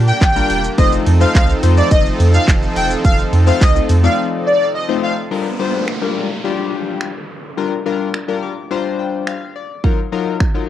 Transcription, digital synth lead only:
0.07 0.17 G5 medium
0.22 0.62 G5 loud
0.78 0.88 D#5 loud
1.21 1.30 F5 medium
1.35 1.44 F5 medium
1.77 1.87 D5 medium
1.92 2.01 D#5 medium
2.34 2.43 F5 medium
2.77 2.86 G5 medium
3.05 3.14 F5 medium
3.47 3.57 F5 medium
3.61 3.71 D#5 loud
4.04 4.13 F5 medium
4.46 4.65 D5 medium
4.75 4.84 D#5 medium
5.03 5.12 F5 medium

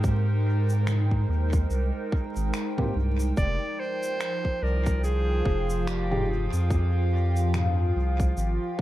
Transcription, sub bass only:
0.00 1.25 G#2 loud
1.29 1.66 D#2 medium
1.70 1.92 C2 medium
2.36 2.52 G#1 medium
2.95 3.33 C2 medium
3.37 3.58 F1 loud
4.62 5.42 C2 medium
5.45 6.48 F1 medium
6.53 7.92 F2 loud
7.95 8.33 C2 medium
8.37 8.58 G#1 medium

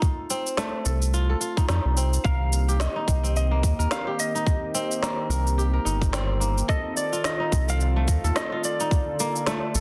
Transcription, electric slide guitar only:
2.25 2.77 F5 loud
2.81 3.36 D#5 medium
3.37 3.91 D#5 loud
3.92 4.20 F5 loud
4.20 5.26 D#5 medium
6.69 6.97 D#5 loud
6.97 7.25 D5 medium
7.25 7.70 D#5 medium
7.70 8.38 F5 loud
8.37 8.65 D#5 medium
8.65 9.80 D5 medium

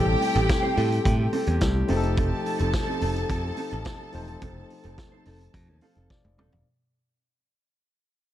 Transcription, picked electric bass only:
0.00 0.14 A1 loud
0.36 0.46 A1 loud
0.78 0.98 A2 loud
1.05 1.26 A2 loud
1.48 1.58 E2 medium
1.62 1.82 C2 medium
1.90 2.31 F1 loud
2.60 2.71 F1 loud
3.02 3.23 F1 loud
3.29 3.50 F2 loud
3.73 3.83 A1 medium
4.15 4.35 E1 medium
4.42 4.63 F1 loud
4.85 4.95 F1 loud
5.27 5.47 F1 medium
5.54 5.69 F2 loud
5.69 5.79 D#2 medium
5.97 6.07 F1 medium
6.25 6.38 F1 medium
6.38 6.49 D#1 medium
6.52 6.63 E1 medium

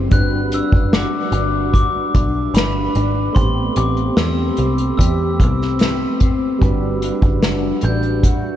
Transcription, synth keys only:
0.09 3.31 G3 medium
0.09 3.32 D4 soft
0.09 3.33 F#4 soft
0.14 3.34 B4 medium
3.33 6.55 A3 medium
3.33 6.56 C4 medium
3.33 6.57 G4 medium
3.37 6.58 B3 medium
6.59 8.56 G3 medium
6.59 8.56 D4 medium
6.59 8.56 F#4 medium
6.64 8.56 B4 medium

